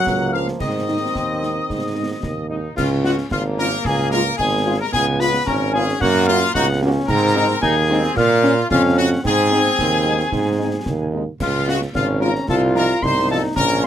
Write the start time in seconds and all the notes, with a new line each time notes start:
Already playing: F#3 F#5 F#6
0.07 C#2 A#3, concert bass drum, snare
0.32 F3 A#3 C#4 A#4 F5 F6
0.48 snare
0.60 G#2 D#3 C4 D#5 D#6, concert bass drum, snare, crash
0.88 G#3 C4 D#4
1.15 D#2, concert bass drum, snare
1.41 G#3 C4 D#4, snare
1.68 G#2, concert bass drum, snare
1.94 G#3 C4 D#4
2.23 D#2, concert bass drum, snare
2.48 G#3 C4 D#4 D#5
2.76 C#2 C#4 F4 F5, concert bass drum, snare, crash
3.03 G#3 C#4 F4 F#4 F#5, snare
3.18 snare
3.30 G#1 A#3 F4 F5, concert bass drum, snare
3.58 G#3 C#4 F4 A#4 A#5
3.72 snare
3.85 C#2 G#4 G#5, concert bass drum, snare
4.11 G#3 C#4 F4 A#4 A#5, snare
4.37 G#1 G#3 G#4 G#5, concert bass drum, snare
4.65 G#3 C#4 F4
4.79 A#4 A#5
4.92 C#2 B3 G#4 G#5, concert bass drum, snare, crash
5.19 B3 C#4 F4 B4 B5, snare
5.34 snare
5.45 G#1 C#4 A#4 A#5, concert bass drum, snare
5.72 B3 C#4 F4 G#4 G#5
5.88 snare
6.00 F#2 A#3 F#4 F#5, concert bass drum, snare
6.26 A#3 C#4 F4 F#4 F5, snare
6.54 C#2 D#4 F#4 F#5, concert bass drum, snare
6.81 A#3 C#4 F#4
7.07 G#2 C4 A#4 A#5, concert bass drum, snare, crash
7.36 G#3 C4 D#4, snare
7.50 snare
7.61 D#2 D#4 G#4 G#5, concert bass drum, snare
7.89 G#3 C4 D#4
8.04 snare
8.16 A#2 A#3 F4 F5, concert bass drum, snare
8.43 C#4, snare
8.70 F2 C#4 F4 F5, concert bass drum, snare
8.97 C#4 F#4 F#5
9.23 G#2 C4 G#4 G#5, concert bass drum, snare, crash
9.50 G#3 C4 D#4, snare
9.66 snare
9.79 D#2, concert bass drum, snare
10.04 G#3 C4 D#4
10.19 snare
10.32 G#2, concert bass drum, snare
10.59 G#3 C4 D#4
10.86 D#2, concert bass drum, snare
11.13 G#3 C4 D#4
11.40 C#2 F4 F5, concert bass drum, snare, crash
11.67 G#3 C#4 F4 F#4 F#5, snare
11.81 snare
11.94 G#1 C#4 F4 F5, concert bass drum, snare
12.20 G#3 C#4 F4 A#4 A#5
12.35 snare
12.48 C2 F4 A4 A5, concert bass drum, snare
12.75 F3 D#4 F4 A#4 A#5, snare
13.01 C2 D#4 C5 C6, concert bass drum, snare
13.29 F3 D#4 F4 A4 A5
13.55 A#1 C#4 A#4 A#5, concert bass drum, snare, crash
13.83 F3 C#4 F4 C6, snare